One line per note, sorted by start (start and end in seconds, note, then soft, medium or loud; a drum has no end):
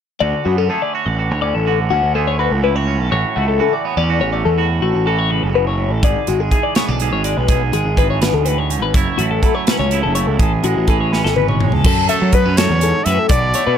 0.20 0.32 D2 medium
0.20 1.65 D3 medium
0.20 0.70 F#4 medium
0.20 0.45 D5 medium
0.45 0.68 F#2 medium
0.45 0.58 B3 medium
0.45 0.57 F#4 medium
0.58 1.42 C#4 soft
0.58 0.69 A4 medium
0.69 2.15 A3 medium
0.69 0.94 G#4 soft
0.69 0.82 A4 medium
0.82 0.94 D5 medium
0.94 1.19 F#4 medium
0.94 1.06 C#5 medium
1.06 1.31 A1 medium
1.06 1.30 D5 medium
1.18 1.67 A2 medium
1.18 1.67 F#4 medium
1.30 1.53 D2 medium
1.30 1.42 C#5 medium
1.42 1.69 C#4 soft
1.42 1.54 D5 medium
1.55 1.88 A1 medium
1.55 1.79 A4 medium
1.66 3.12 D3 medium
1.66 2.16 F#4 medium
1.90 2.02 D2 medium
1.90 2.87 C#4 medium
1.90 2.15 F#4 medium
2.03 2.48 D2 medium
2.15 3.35 A3 medium
2.15 2.39 G#4 medium
2.15 2.27 A4 medium
2.27 2.39 C#5 medium
2.39 2.63 F#4 medium
2.39 2.52 B4 medium
2.51 2.99 C#2 medium
2.51 2.63 A4 medium
2.63 3.09 A2 medium
2.63 2.76 E4 medium
2.63 2.75 B4 medium
2.75 3.10 F#4 soft
2.75 3.00 C#5 medium
2.87 3.85 C#4 medium
2.99 3.11 B1 medium
2.99 3.12 A4 medium
3.10 3.23 A1 loud
3.10 4.08 A2 medium
3.10 3.59 F#4 medium
3.10 3.36 C#5 medium
3.36 3.59 C#2 medium
3.36 4.33 A3 medium
3.36 3.48 F#4 medium
3.48 3.60 A4 medium
3.59 4.61 E3 medium
3.59 4.09 F#4 medium
3.59 3.73 A4 medium
3.73 3.86 D5 medium
3.85 3.97 B3 medium
3.85 3.97 C#5 medium
3.97 4.22 E2 medium
3.97 4.58 C#4 soft
3.97 4.21 D5 medium
4.09 4.58 E2 medium
4.09 4.55 F#4 medium
4.21 4.44 A1 medium
4.21 4.32 C#5 medium
4.33 4.55 A3 medium
4.33 4.45 D5 medium
4.45 4.79 E2 medium
4.45 4.70 A4 medium
4.58 5.29 A2 medium
4.58 5.06 F#4 medium
4.82 4.93 A1 medium
4.82 6.01 A3 medium
4.82 5.06 F#4 medium
4.95 5.39 A1 medium
5.06 6.51 E3 medium
5.06 6.01 F#4 medium
5.06 5.19 A4 medium
5.19 5.31 C#5 medium
5.30 5.53 C#3 medium
5.30 5.43 B4 medium
5.43 5.92 F#1 medium
5.43 5.55 A4 medium
5.54 5.78 B2 medium
5.54 5.67 B4 medium
5.67 5.92 C#5 medium
5.78 6.03 A2 medium
5.92 6.03 A1 medium
5.92 6.04 A4 medium
6.03 6.15 G#1 medium
6.03 7.00 G#2 medium
6.03 6.52 G#4 medium
6.03 6.28 D5 medium
6.03 kick loud
6.03 closed hi-hat medium
6.27 6.50 G#1 medium
6.27 7.24 G#3 medium
6.27 6.40 F#4 medium
6.27 closed hi-hat medium
6.40 6.51 G#4 medium
6.51 7.97 E3 medium
6.51 6.64 G#4 medium
6.51 7.00 G#4 medium
6.51 kick medium
6.51 closed hi-hat soft
6.63 6.76 D5 medium
6.75 6.88 B3 medium
6.75 6.87 C#5 medium
6.75 snare medium
6.75 closed hi-hat medium
6.88 7.13 B1 medium
6.88 7.49 D4 soft
6.88 7.12 D5 medium
7.00 7.46 G#2 medium
7.00 7.47 G#4 soft
7.00 closed hi-hat medium
7.13 7.36 G#1 medium
7.13 7.24 C#5 medium
7.24 7.46 G#3 medium
7.24 7.37 D5 medium
7.24 closed hi-hat medium
7.37 7.71 B1 medium
7.37 7.61 B4 medium
7.48 8.69 G#2 medium
7.48 7.97 G#4 medium
7.48 kick loud
7.48 closed hi-hat medium
7.73 7.85 G#1 medium
7.73 8.92 G#3 medium
7.73 7.98 G#4 medium
7.73 closed hi-hat medium
7.85 8.30 G#1 medium
7.97 8.98 E3 medium
7.97 8.92 G#4 soft
7.97 8.10 B4 medium
7.97 kick medium
7.97 closed hi-hat medium
8.10 8.22 C#5 medium
8.21 8.45 B2 medium
8.21 8.34 B4 medium
8.21 snare medium
8.21 closed hi-hat medium
8.33 8.82 D2 medium
8.33 8.45 A4 medium
8.45 8.70 A2 medium
8.45 8.58 B4 medium
8.45 closed hi-hat medium
8.58 8.82 C#5 medium
8.70 8.94 G#2 medium
8.70 closed hi-hat medium
8.82 8.94 G#1 medium
8.82 8.94 B4 medium
8.94 9.06 F#1 medium
8.94 10.37 F#2 medium
8.94 9.44 E4 medium
8.94 9.19 C#5 medium
8.94 kick loud
8.94 closed hi-hat medium
9.18 9.41 A1 medium
9.18 10.16 A3 medium
9.18 9.30 F#4 medium
9.18 closed hi-hat medium
9.31 9.42 A4 medium
9.43 10.37 F#3 medium
9.43 9.92 E4 soft
9.43 9.55 A4 medium
9.43 kick medium
9.43 closed hi-hat soft
9.55 9.67 C#5 medium
9.67 11.12 C#4 medium
9.67 9.79 B4 medium
9.67 snare loud
9.67 closed hi-hat medium
9.79 10.05 C#2 medium
9.79 10.03 C#5 medium
9.91 10.37 C#3 medium
9.91 10.40 E4 medium
9.91 closed hi-hat medium
10.03 10.26 F#1 medium
10.03 10.15 A4 medium
10.15 10.43 A3 medium
10.15 10.27 C#5 medium
10.15 closed hi-hat medium
10.27 10.39 C#2 medium
10.27 10.52 A4 medium
10.39 10.62 A1 medium
10.39 11.36 A2 medium
10.39 10.88 G#4 medium
10.39 kick medium
10.39 closed hi-hat medium
10.64 10.75 A1 medium
10.64 11.59 G#3 medium
10.64 10.88 F#4 medium
10.64 closed hi-hat medium
10.77 11.21 A1 medium
10.88 11.83 E3 medium
10.88 11.37 G#4 medium
10.88 11.00 A4 medium
10.88 kick medium
10.88 closed hi-hat soft
11.01 11.12 C#5 medium
11.12 11.82 C#4 medium
11.12 11.24 B4 medium
11.12 snare soft
11.24 11.73 G#1 medium
11.24 11.36 A4 medium
11.24 snare medium
11.36 11.85 E2 medium
11.36 11.49 B4 medium
11.36 11.83 B4 soft
11.36 high tom medium
11.48 11.73 C#5 medium
11.48 mid tom medium
11.61 11.82 G#3 soft
11.61 mid tom medium
11.72 11.84 C#2 medium
11.72 11.85 A4 medium
11.72 floor tom medium
11.84 12.07 F#2 medium
11.84 12.57 F#2 medium
11.84 12.09 A4 medium
11.84 kick loud
11.84 crash loud
12.09 13.33 A3 medium
12.09 12.35 A4 medium
12.09 12.22 E5 medium
12.09 closed hi-hat medium
12.22 12.44 F#3 medium
12.22 12.34 C#5 medium
12.33 12.46 B3 medium
12.33 12.59 B4 medium
12.33 12.58 B4 medium
12.33 kick medium
12.33 closed hi-hat medium
12.46 12.68 F#2 medium
12.46 13.30 C#4 soft
12.57 12.82 F#2 medium
12.57 12.71 A4 medium
12.57 13.06 C#5 medium
12.57 snare loud
12.57 closed hi-hat medium
12.70 12.92 E2 medium
12.70 12.83 B4 medium
12.81 13.06 G#2 medium
12.81 13.07 A4 medium
12.81 closed hi-hat medium
13.05 13.17 F#2 medium
13.05 13.30 A2 medium
13.05 13.19 B4 medium
13.05 13.29 E5 medium
13.05 closed hi-hat medium
13.19 13.31 A4 medium
13.29 13.52 B1 medium
13.29 13.78 B2 medium
13.29 13.78 D5 medium
13.29 13.54 D5 medium
13.29 kick loud
13.29 closed hi-hat medium
13.54 13.78 A3 medium
13.54 13.66 C#5 medium
13.54 closed hi-hat medium
13.67 13.78 B2 medium
13.67 13.78 B4 medium